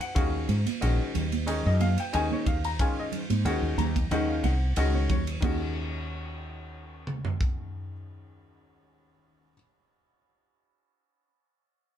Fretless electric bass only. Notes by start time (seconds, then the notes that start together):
0.16 D#2
0.49 G#2
0.83 A#1
1.16 D#2
1.66 F#2
2.14 D#2
2.46 D#2
3.30 G#2
3.45 D#2
3.62 D#2
3.78 D#2
4.11 D#2
4.44 C2
4.77 C#2
5.10 D#2
5.42 D#2